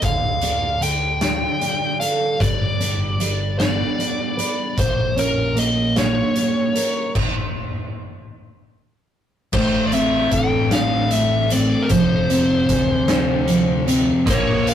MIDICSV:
0, 0, Header, 1, 6, 480
1, 0, Start_track
1, 0, Tempo, 791557
1, 15, Time_signature, 6, 3, 24, 8
1, 8938, End_track
2, 0, Start_track
2, 0, Title_t, "Lead electric guitar"
2, 0, Program_c, 0, 29
2, 27, Note_on_c, 0, 77, 90
2, 499, Note_off_c, 0, 77, 0
2, 501, Note_on_c, 0, 79, 97
2, 1210, Note_off_c, 0, 79, 0
2, 1212, Note_on_c, 0, 77, 75
2, 1460, Note_on_c, 0, 74, 84
2, 1461, Note_off_c, 0, 77, 0
2, 2168, Note_off_c, 0, 74, 0
2, 2175, Note_on_c, 0, 74, 85
2, 2904, Note_off_c, 0, 74, 0
2, 2907, Note_on_c, 0, 72, 84
2, 3147, Note_on_c, 0, 70, 71
2, 3149, Note_off_c, 0, 72, 0
2, 3388, Note_on_c, 0, 75, 90
2, 3390, Note_off_c, 0, 70, 0
2, 3625, Note_off_c, 0, 75, 0
2, 3627, Note_on_c, 0, 73, 77
2, 4320, Note_off_c, 0, 73, 0
2, 5786, Note_on_c, 0, 72, 91
2, 5984, Note_off_c, 0, 72, 0
2, 5987, Note_on_c, 0, 74, 60
2, 6023, Note_on_c, 0, 76, 90
2, 6026, Note_off_c, 0, 74, 0
2, 6246, Note_off_c, 0, 76, 0
2, 6261, Note_on_c, 0, 79, 98
2, 6501, Note_off_c, 0, 79, 0
2, 6504, Note_on_c, 0, 77, 95
2, 6743, Note_off_c, 0, 77, 0
2, 6745, Note_on_c, 0, 76, 83
2, 6984, Note_on_c, 0, 74, 74
2, 6991, Note_off_c, 0, 76, 0
2, 7171, Note_on_c, 0, 70, 54
2, 7186, Note_off_c, 0, 74, 0
2, 7218, Note_off_c, 0, 70, 0
2, 7220, Note_on_c, 0, 72, 83
2, 8392, Note_off_c, 0, 72, 0
2, 8673, Note_on_c, 0, 73, 95
2, 8906, Note_on_c, 0, 77, 91
2, 8910, Note_off_c, 0, 73, 0
2, 8938, Note_off_c, 0, 77, 0
2, 8938, End_track
3, 0, Start_track
3, 0, Title_t, "Steel-string acoustic guitar"
3, 0, Program_c, 1, 25
3, 16, Note_on_c, 1, 50, 65
3, 257, Note_on_c, 1, 62, 57
3, 483, Note_off_c, 1, 50, 0
3, 490, Note_on_c, 1, 50, 60
3, 740, Note_on_c, 1, 65, 54
3, 971, Note_off_c, 1, 62, 0
3, 978, Note_on_c, 1, 62, 59
3, 1214, Note_on_c, 1, 69, 60
3, 1452, Note_off_c, 1, 50, 0
3, 1454, Note_off_c, 1, 69, 0
3, 1455, Note_on_c, 1, 55, 62
3, 1456, Note_off_c, 1, 62, 0
3, 1457, Note_off_c, 1, 65, 0
3, 1699, Note_on_c, 1, 62, 60
3, 1933, Note_off_c, 1, 55, 0
3, 1941, Note_on_c, 1, 55, 61
3, 2179, Note_on_c, 1, 59, 60
3, 2409, Note_off_c, 1, 62, 0
3, 2416, Note_on_c, 1, 62, 64
3, 2651, Note_on_c, 1, 71, 66
3, 2888, Note_on_c, 1, 46, 64
3, 2894, Note_off_c, 1, 71, 0
3, 2897, Note_off_c, 1, 62, 0
3, 2898, Note_off_c, 1, 59, 0
3, 2899, Note_off_c, 1, 55, 0
3, 3130, Note_on_c, 1, 61, 61
3, 3367, Note_on_c, 1, 58, 65
3, 3612, Note_on_c, 1, 65, 60
3, 3852, Note_off_c, 1, 61, 0
3, 3859, Note_on_c, 1, 61, 59
3, 4095, Note_off_c, 1, 46, 0
3, 4097, Note_on_c, 1, 70, 70
3, 4334, Note_off_c, 1, 58, 0
3, 4337, Note_off_c, 1, 65, 0
3, 4339, Note_off_c, 1, 70, 0
3, 4340, Note_off_c, 1, 61, 0
3, 5781, Note_on_c, 1, 45, 68
3, 6017, Note_on_c, 1, 60, 65
3, 6256, Note_on_c, 1, 69, 70
3, 6737, Note_on_c, 1, 57, 61
3, 6977, Note_off_c, 1, 60, 0
3, 6981, Note_off_c, 1, 45, 0
3, 6984, Note_on_c, 1, 60, 65
3, 7218, Note_off_c, 1, 57, 0
3, 7218, Note_off_c, 1, 69, 0
3, 7221, Note_on_c, 1, 53, 68
3, 7223, Note_off_c, 1, 60, 0
3, 7458, Note_on_c, 1, 60, 60
3, 7700, Note_on_c, 1, 68, 81
3, 7935, Note_on_c, 1, 65, 64
3, 8165, Note_off_c, 1, 53, 0
3, 8173, Note_on_c, 1, 53, 56
3, 8402, Note_off_c, 1, 60, 0
3, 8409, Note_on_c, 1, 60, 64
3, 8652, Note_off_c, 1, 60, 0
3, 8653, Note_off_c, 1, 53, 0
3, 8653, Note_off_c, 1, 65, 0
3, 8655, Note_off_c, 1, 68, 0
3, 8938, End_track
4, 0, Start_track
4, 0, Title_t, "Distorted electric guitar"
4, 0, Program_c, 2, 30
4, 5779, Note_on_c, 2, 45, 93
4, 5785, Note_on_c, 2, 52, 81
4, 5793, Note_on_c, 2, 57, 88
4, 6486, Note_off_c, 2, 45, 0
4, 6490, Note_off_c, 2, 52, 0
4, 6493, Note_off_c, 2, 57, 0
4, 6499, Note_on_c, 2, 57, 78
4, 6505, Note_on_c, 2, 52, 67
4, 6512, Note_on_c, 2, 45, 63
4, 7206, Note_off_c, 2, 57, 0
4, 7209, Note_off_c, 2, 52, 0
4, 7210, Note_on_c, 2, 41, 80
4, 7212, Note_off_c, 2, 45, 0
4, 7221, Note_on_c, 2, 48, 79
4, 7227, Note_on_c, 2, 53, 94
4, 7920, Note_off_c, 2, 41, 0
4, 7925, Note_off_c, 2, 48, 0
4, 7928, Note_off_c, 2, 53, 0
4, 7931, Note_on_c, 2, 53, 75
4, 7939, Note_on_c, 2, 48, 68
4, 7948, Note_on_c, 2, 41, 58
4, 8637, Note_off_c, 2, 53, 0
4, 8640, Note_off_c, 2, 48, 0
4, 8642, Note_on_c, 2, 46, 86
4, 8646, Note_off_c, 2, 41, 0
4, 8650, Note_on_c, 2, 53, 92
4, 8656, Note_on_c, 2, 58, 93
4, 8938, Note_off_c, 2, 46, 0
4, 8938, Note_off_c, 2, 53, 0
4, 8938, Note_off_c, 2, 58, 0
4, 8938, End_track
5, 0, Start_track
5, 0, Title_t, "Picked electric bass"
5, 0, Program_c, 3, 34
5, 14, Note_on_c, 3, 38, 72
5, 870, Note_off_c, 3, 38, 0
5, 1457, Note_on_c, 3, 31, 84
5, 2313, Note_off_c, 3, 31, 0
5, 2897, Note_on_c, 3, 34, 78
5, 3755, Note_off_c, 3, 34, 0
5, 5779, Note_on_c, 3, 33, 88
5, 6209, Note_off_c, 3, 33, 0
5, 6258, Note_on_c, 3, 33, 86
5, 7115, Note_off_c, 3, 33, 0
5, 7217, Note_on_c, 3, 29, 82
5, 7646, Note_off_c, 3, 29, 0
5, 7698, Note_on_c, 3, 38, 84
5, 8551, Note_off_c, 3, 38, 0
5, 8654, Note_on_c, 3, 34, 84
5, 8938, Note_off_c, 3, 34, 0
5, 8938, End_track
6, 0, Start_track
6, 0, Title_t, "Drums"
6, 12, Note_on_c, 9, 42, 78
6, 15, Note_on_c, 9, 36, 105
6, 73, Note_off_c, 9, 42, 0
6, 76, Note_off_c, 9, 36, 0
6, 252, Note_on_c, 9, 42, 62
6, 312, Note_off_c, 9, 42, 0
6, 497, Note_on_c, 9, 42, 61
6, 558, Note_off_c, 9, 42, 0
6, 735, Note_on_c, 9, 38, 93
6, 735, Note_on_c, 9, 42, 78
6, 795, Note_off_c, 9, 42, 0
6, 796, Note_off_c, 9, 38, 0
6, 979, Note_on_c, 9, 42, 50
6, 1040, Note_off_c, 9, 42, 0
6, 1220, Note_on_c, 9, 42, 57
6, 1281, Note_off_c, 9, 42, 0
6, 1457, Note_on_c, 9, 36, 101
6, 1464, Note_on_c, 9, 42, 82
6, 1518, Note_off_c, 9, 36, 0
6, 1524, Note_off_c, 9, 42, 0
6, 1702, Note_on_c, 9, 42, 57
6, 1763, Note_off_c, 9, 42, 0
6, 1942, Note_on_c, 9, 42, 55
6, 2002, Note_off_c, 9, 42, 0
6, 2182, Note_on_c, 9, 38, 93
6, 2182, Note_on_c, 9, 42, 67
6, 2242, Note_off_c, 9, 42, 0
6, 2243, Note_off_c, 9, 38, 0
6, 2425, Note_on_c, 9, 42, 54
6, 2485, Note_off_c, 9, 42, 0
6, 2661, Note_on_c, 9, 42, 55
6, 2721, Note_off_c, 9, 42, 0
6, 2897, Note_on_c, 9, 36, 102
6, 2899, Note_on_c, 9, 42, 80
6, 2957, Note_off_c, 9, 36, 0
6, 2960, Note_off_c, 9, 42, 0
6, 3139, Note_on_c, 9, 42, 56
6, 3200, Note_off_c, 9, 42, 0
6, 3376, Note_on_c, 9, 42, 53
6, 3437, Note_off_c, 9, 42, 0
6, 3616, Note_on_c, 9, 42, 72
6, 3617, Note_on_c, 9, 38, 95
6, 3677, Note_off_c, 9, 38, 0
6, 3677, Note_off_c, 9, 42, 0
6, 3854, Note_on_c, 9, 42, 54
6, 3915, Note_off_c, 9, 42, 0
6, 4097, Note_on_c, 9, 42, 61
6, 4158, Note_off_c, 9, 42, 0
6, 4337, Note_on_c, 9, 36, 103
6, 4337, Note_on_c, 9, 49, 82
6, 4397, Note_off_c, 9, 49, 0
6, 4398, Note_off_c, 9, 36, 0
6, 5777, Note_on_c, 9, 49, 97
6, 5779, Note_on_c, 9, 36, 112
6, 5838, Note_off_c, 9, 49, 0
6, 5840, Note_off_c, 9, 36, 0
6, 6015, Note_on_c, 9, 42, 60
6, 6076, Note_off_c, 9, 42, 0
6, 6255, Note_on_c, 9, 42, 64
6, 6257, Note_on_c, 9, 36, 72
6, 6315, Note_off_c, 9, 42, 0
6, 6318, Note_off_c, 9, 36, 0
6, 6496, Note_on_c, 9, 38, 97
6, 6496, Note_on_c, 9, 42, 77
6, 6556, Note_off_c, 9, 42, 0
6, 6557, Note_off_c, 9, 38, 0
6, 6735, Note_on_c, 9, 42, 64
6, 6796, Note_off_c, 9, 42, 0
6, 6976, Note_on_c, 9, 42, 69
6, 7037, Note_off_c, 9, 42, 0
6, 7213, Note_on_c, 9, 42, 86
6, 7217, Note_on_c, 9, 36, 106
6, 7274, Note_off_c, 9, 42, 0
6, 7278, Note_off_c, 9, 36, 0
6, 7459, Note_on_c, 9, 42, 64
6, 7520, Note_off_c, 9, 42, 0
6, 7695, Note_on_c, 9, 42, 67
6, 7696, Note_on_c, 9, 36, 71
6, 7756, Note_off_c, 9, 42, 0
6, 7757, Note_off_c, 9, 36, 0
6, 7933, Note_on_c, 9, 38, 98
6, 7933, Note_on_c, 9, 42, 87
6, 7993, Note_off_c, 9, 42, 0
6, 7994, Note_off_c, 9, 38, 0
6, 8173, Note_on_c, 9, 42, 70
6, 8233, Note_off_c, 9, 42, 0
6, 8415, Note_on_c, 9, 42, 72
6, 8476, Note_off_c, 9, 42, 0
6, 8652, Note_on_c, 9, 36, 110
6, 8653, Note_on_c, 9, 42, 97
6, 8713, Note_off_c, 9, 36, 0
6, 8714, Note_off_c, 9, 42, 0
6, 8896, Note_on_c, 9, 42, 71
6, 8938, Note_off_c, 9, 42, 0
6, 8938, End_track
0, 0, End_of_file